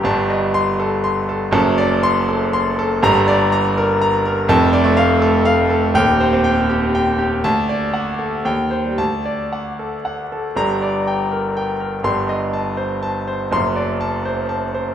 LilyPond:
<<
  \new Staff \with { instrumentName = "Grand piano" } { \time 3/4 \key g \minor \tempo 4 = 121 << { r4 c'''4 r4 | r4 c'''4 r4 | bes''4 r2 | a''4 r2 |
g''4 r2 | a''4 r4 g''4 | a''4 r2 | bes''4 r2 |
c'''4 r2 | c'''4 r2 | } \\ { a''8 ees''4 a'8 c'''8 a'8 | a''8 d''4 a'8 c'''8 a'8 | r8 d''8 bes''8 bes'8 bes''8 bes'8 | r8 d''8 f''8 a'8 f''8 a'8 |
r8 c''8 g''8 g'8 g''8 g'8 | r8 d''8 fis''8 a'8 r8 c''8 | r8 d''8 fis''8 a'8 fis''8 a'8 | r8 d''8 g''8 bes'8 g''8 bes'8 |
r8 ees''8 a''8 c''8 a''8 c''8 | r8 d''8 a''8 c''8 a''8 c''8 | } >> }
  \new Staff \with { instrumentName = "Grand piano" } { \clef bass \time 3/4 \key g \minor <g,, g,>2. | <fis,, fis,>2. | <g,, g,>2. | <f,, f,>8. a8 r4. r16 |
<ees,, ees,>8. c'8 r4. r16 | d,2 ees,8. g16 | d,2. | <g,, g,>2. |
<g,, g,>2. | <fis,, fis,>2. | }
>>